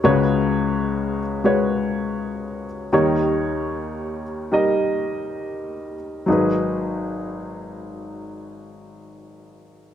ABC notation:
X:1
M:6/8
L:1/16
Q:3/8=36
K:G#m
V:1 name="Upright piano"
[G,FBc]4- [G,FBc] z [G,FBc]4- [G,FBc] z | [=G,DAc]4- [G,DAc] z [G,DAd]4- [G,DAd] z | [F,DGB]12 |]
V:2 name="Upright piano" clef=bass
[C,,C,]12 | [D,,D,]12 | G,,,12 |]